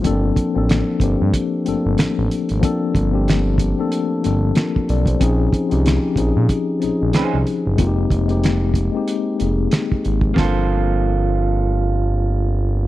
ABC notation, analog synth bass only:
X:1
M:4/4
L:1/16
Q:"Swing 16ths" 1/4=93
K:Fdor
V:1 name="Analog synth bass" clef=bass
G,,,2 z =A,,,2 z G,,, G,, z2 G,,, G,,, A,,, A,,, z _A,,, | z2 G,,,4- G,,, z3 G,,,2 z2 =B,,,2 | B,,,2 z C,,2 z B,,, B,, z2 B,,, B,,, C,, C,, z ^F,,, | F,,,2 F,,,4- F,,, z3 F,,,2 z2 A,,,2 |
G,,,16 |]